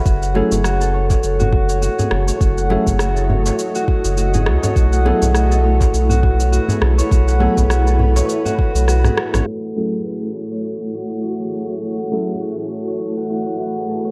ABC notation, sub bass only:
X:1
M:4/4
L:1/16
Q:"Swing 16ths" 1/4=102
K:F#dor
V:1 name="Sub bass" clef=bass
F,,,2 z F,,,4 z F,,,4 z2 F,,, z | F,,,2 z F,,,4 z4 F,,,3 C,, z | B,,,2 z B,,,4 z B,,,4 z2 B,,, z | B,,,2 z B,,,4 z4 B,,,2 z2 A,,, |
z16 | z16 |]